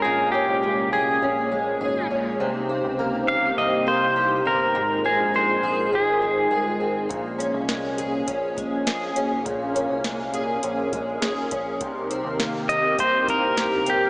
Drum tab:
HH |--------|--------|--------|xxxxxxxx|
SD |--------|--------|--------|--o---o-|
BD |--------|--------|--------|o---oo--|

HH |xxxxxxxx|xxxxxxxx|
SD |--o---o-|--o---o-|
BD |o----o-o|o---oo--|